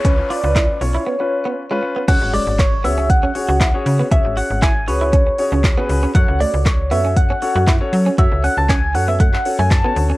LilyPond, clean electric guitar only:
\new Staff \with { instrumentName = "Clean electric guitar" } { \time 4/4 \key cis \phrygian \tempo 4 = 118 cis'16 r16 eis'16 r16 e'16 r8 e'16 b16 r8 b16 r16 gis16 r16 b16 | cis'16 r16 gis16 r8. b16 cis'16 r16 cis'16 r16 fis'16 e'16 r8 b16 | cis'16 r16 fis'16 r16 e'16 r8 e'16 cis'16 r8 cis'16 r16 b16 r16 cis'16 | fis16 r16 a16 r8. b16 cis'16 r16 cis'16 r16 fis'16 e'16 r8 cis'16 |
fis'16 r16 cis'16 r16 cis'16 r8 b16 a16 r8 a16 r16 b16 r16 cis'16 | }